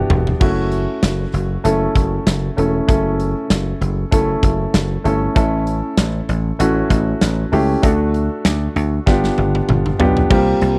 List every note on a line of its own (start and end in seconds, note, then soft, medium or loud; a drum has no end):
0.00 0.43 B3 medium
0.00 0.42 D4 medium
0.00 0.41 E4 medium
0.00 0.41 F#4 medium
0.00 0.39 G4 medium
0.00 0.43 A4 medium
0.10 0.32 E1 medium
0.10 floor tom medium
0.27 floor tom medium
0.40 0.85 F#1 medium
0.40 1.58 A3 medium
0.40 1.58 C#4 medium
0.40 1.58 E4 medium
0.40 1.58 F#4 medium
0.40 kick loud
0.40 crash medium
0.72 closed hi-hat medium
1.03 1.25 F#1 medium
1.03 snare loud
1.03 closed hi-hat medium
1.33 1.56 F#1 medium
1.33 closed hi-hat medium
1.64 1.87 F#1 loud
1.64 2.52 A3 medium
1.64 2.52 C#4 medium
1.64 2.52 E4 medium
1.64 2.53 A4 medium
1.64 closed hi-hat medium
1.95 2.18 F#1 medium
1.95 kick medium
1.95 closed hi-hat medium
2.26 2.49 F#1 medium
2.26 snare medium
2.26 closed hi-hat medium
2.57 2.80 E1 medium
2.57 2.86 A3 medium
2.57 2.86 C#4 medium
2.57 2.87 E4 medium
2.57 2.87 A4 medium
2.57 closed hi-hat medium
2.88 3.33 F#1 loud
2.88 4.05 A3 medium
2.88 4.05 C#4 medium
2.88 4.05 E4 medium
2.88 4.06 A4 medium
2.88 kick loud
2.88 closed hi-hat medium
3.20 closed hi-hat medium
3.50 3.73 F#1 medium
3.50 snare loud
3.50 closed hi-hat medium
3.81 4.03 F#1 medium
3.81 closed hi-hat medium
4.11 4.35 F#1 loud
4.11 5.00 A3 medium
4.11 5.00 C#4 medium
4.11 5.00 E4 medium
4.11 5.00 A4 medium
4.11 kick loud
4.11 closed hi-hat medium
4.43 4.65 F#1 medium
4.43 kick medium
4.43 closed hi-hat medium
4.74 4.96 F#1 medium
4.74 snare loud
4.74 closed hi-hat medium
5.04 5.27 G1 medium
5.04 5.34 A3 medium
5.04 5.34 C#4 medium
5.04 5.34 E4 medium
5.04 5.34 A4 medium
5.04 closed hi-hat medium
5.35 5.81 A1 loud
5.35 6.52 A3 medium
5.35 6.53 C#4 medium
5.35 6.53 E4 medium
5.35 6.53 A4 medium
5.35 kick loud
5.35 closed hi-hat medium
5.67 closed hi-hat medium
5.97 6.20 A1 loud
5.97 snare loud
5.97 closed hi-hat medium
6.29 6.51 A1 medium
6.29 closed hi-hat medium
6.59 6.82 A1 loud
6.59 7.47 A3 medium
6.59 7.47 C#4 medium
6.59 7.48 E4 medium
6.59 7.48 F#4 medium
6.59 closed hi-hat medium
6.90 7.13 A1 medium
6.90 kick medium
6.90 closed hi-hat medium
7.21 7.44 A1 loud
7.21 snare loud
7.21 closed hi-hat medium
7.52 7.75 C#2 medium
7.52 7.81 A3 medium
7.52 7.82 C#4 medium
7.52 7.82 E4 medium
7.52 7.82 G4 medium
7.52 open hi-hat medium
7.83 8.28 D2 loud
7.83 9.00 A3 medium
7.83 9.00 D4 medium
7.83 9.00 F#4 medium
7.83 9.00 A4 medium
7.83 kick loud
7.83 closed hi-hat medium
8.14 closed hi-hat medium
8.45 8.67 D2 loud
8.45 snare loud
8.45 closed hi-hat medium
8.76 8.98 D2 loud
8.76 closed hi-hat medium
9.06 9.29 G1 loud
9.06 9.94 B3 medium
9.06 9.95 D4 medium
9.06 9.95 F4 medium
9.06 9.95 G4 medium
9.06 kick loud
9.06 snare medium
9.24 snare medium
9.38 9.60 G1 medium
9.38 high tom medium
9.55 high tom medium
9.69 9.91 G1 loud
9.69 mid tom medium
9.86 mid tom medium
9.99 10.22 B1 medium
9.99 10.29 B3 medium
9.99 10.29 D4 medium
9.99 10.29 F4 medium
9.99 10.29 G4 medium
9.99 floor tom medium
10.17 floor tom medium
10.30 10.53 C2 loud
10.30 10.75 G3 medium
10.30 10.75 A#3 medium
10.30 10.76 C4 medium
10.30 10.76 F4 medium
10.30 10.76 G4 medium
10.30 kick loud
10.30 crash loud
10.61 10.79 C2 loud
10.61 closed hi-hat medium